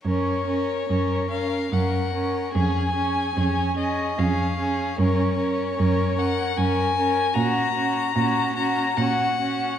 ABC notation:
X:1
M:3/4
L:1/8
Q:1/4=74
K:F#
V:1 name="Violin"
c3 e f2 | g3 d e2 | c3 f g2 | a3 a f2 |]
V:2 name="Violin"
A A A A A A | G G G G G G | A A A A A A | F F F F F F |]
V:3 name="Viola"
C C C C C C | C C C C C C | C C C C C C | C C C C C C |]
V:4 name="Cello" clef=bass
F,,2 F,,2 F,,2 | E,,2 E,,2 E,,2 | F,,2 F,,2 F,,2 | A,,2 A,,2 A,,2 |]